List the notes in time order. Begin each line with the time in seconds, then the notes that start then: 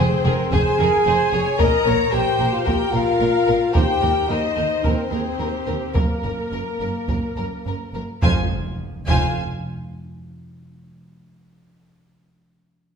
Already playing: F2 C4 G#4 C5
0.24 F1 F2 G#4 A#4, taiko mid
0.51 F1 F2 G#4 C5 G#5, taiko
0.79 F1 F2 G#4 A#4, taiko mid
1.06 F1 F2 G#4 C5
1.33 F1 F2 G#4 C#5
1.58 A#1 A#2 A#4 D#5 A#5, taiko
1.85 A#1 A#2 A#4 C#5
2.12 A#1 A#2 G4 A#4 C5 G5
2.40 A#1 A#2 A#4
2.53 F4 F5
2.65 A#1 A#2 G4 A#4 G5, taiko
2.92 A#1 A#2 F4 A#4 F5
3.20 A#1 A#2 A#4
3.47 A#1 A#2 A#4
3.73 D#2 G4 A#4 C5 G5, taiko
4.01 D#2 A#4
4.28 D#2 D#4 A#4 C5 D#5
4.56 D#2 A#4
4.83 D#2 C4 A#4 C5, taiko
5.11 D#2 G#4 A#4
5.39 D#2 G4 A#4
5.67 D#2 A#4
5.95 F#1 F#2 A#3 A#4, taiko
6.23 F#1 F#2 A#4
6.52 F#1 F#2 A#4
6.80 F#1 F#2 A#4
7.08 F#1 F#2 A#4, taiko
7.37 F#1 F#2 A#4
7.65 F#1 F#2 A#4
7.94 F#1 F#2 A#4
8.22 F1 F2 F3 F4 C5 F5 G#5, taiko, impact
9.07 F1 F2 F4 C5 F5 G#5, taiko